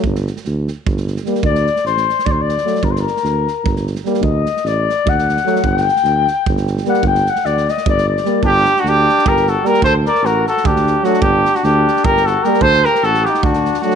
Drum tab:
SD |-oooo-o--ooooo|-ooooooo--oooo|-oooo-o--ooooo|--ooo-o--ooooo|
BD |o-------o-----|o-------o-----|o-------o-----|o-------o-----|

SD |-oooo-o--ooooo|-ooooooo-o-oo-|--ooo-oo-oo-oo|--ooo-oo-oo-oo|
BD |o-------o-----|o-------o-----|o-------o-----|o-------o-----|

SD |--ooo-oo-oo-oo|-ooooooo-ooooo|
BD |o-------o-----|o-------o-----|